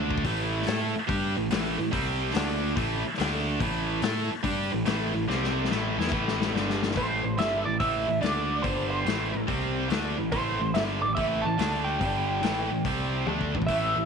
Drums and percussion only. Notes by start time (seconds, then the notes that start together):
0.11 kick
0.18 kick
0.24 kick, open hi-hat
0.62 snare
0.67 snare, open hi-hat
1.09 kick, open hi-hat
1.50 snare, open hi-hat
1.93 kick, open hi-hat
2.30 snare
2.35 snare, open hi-hat
2.77 kick, open hi-hat
3.14 snare
3.19 snare, open hi-hat
3.60 kick, open hi-hat
4.02 snare, open hi-hat
4.44 kick, open hi-hat
4.86 snare, open hi-hat
5.30 snare
5.43 snare
5.64 snare
5.71 snare
6.00 snare
6.07 snare
6.12 kick
6.28 snare
6.41 snare
6.56 snare
6.69 snare
6.83 snare
6.91 snare
6.96 kick, open hi-hat
7.38 snare, open hi-hat
7.80 kick, open hi-hat
8.22 snare, open hi-hat
8.64 kick, open hi-hat
9.06 snare, open hi-hat
9.48 kick, open hi-hat
9.90 snare, open hi-hat
10.32 kick, open hi-hat
10.74 snare, open hi-hat
11.17 kick, open hi-hat
11.59 snare, open hi-hat
12.01 kick, open hi-hat
12.43 snare, open hi-hat
12.85 kick, open hi-hat
13.27 high tom
13.41 kick
13.55 kick
13.62 kick
13.68 kick, open hi-hat